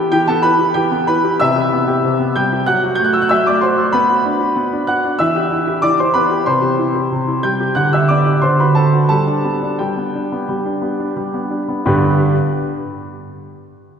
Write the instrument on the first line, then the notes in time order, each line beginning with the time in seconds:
grand piano
Already playing: E3 G4 G5
0.12 E3 G4 G5
0.28 B3 A4 A5
0.43 E4 B4 B5
0.59 G4
0.74 E3 G4 G5
0.92 B3
1.07 E4 B4 B5
1.25 G4
1.40 C3 E5 E6
1.56 G4
1.72 B3
1.88 G4
2.04 C3
2.20 B3
2.36 G3 G5 G6
2.53 G4
2.66 F#3 F#5 F#6
2.84 F#4
2.95 G6
2.99 A3
3.04 F#6
3.13 F#4 E6
3.22 F#6
3.29 F#3 E5 E6
3.47 A3 D5 D6
3.61 F#4 C5 C6
3.78 A3
3.92 B3 B4 B5
4.10 F#4
4.25 D4
4.41 F#4
4.56 B3
4.73 D4
4.87 F#4 F#5 F#6
5.04 D4
5.19 E3 E5 E6
5.35 G4
5.52 E4
5.67 G4
5.82 E3 D5 D6
6.00 E4 C5 C6
6.14 B3 B4 B5
6.31 G4
6.46 C3 C5 C6
6.62 G4
6.79 E4
6.95 G4
7.12 C3
7.28 E4
7.43 G3 G5 G6
7.60 G4
7.75 D3 F#5 F#6
7.93 G4 E5 E6
8.08 B3 D5 D6
8.26 G4
8.42 D3 C5 C6
8.60 F#4 B4 B5
8.75 C4 A4 A5
8.93 F#4
9.09 G3 A4 A5
9.27 D4
9.45 B3
9.62 D4
9.79 G3 G4 G5
9.97 B3
10.15 D4
10.32 B3
10.49 G3
10.66 D4
10.82 B3
11.00 D4
11.17 G3
11.34 B3
11.50 D4
11.68 B3
11.86 G2 D3 B3 D4 G4 B4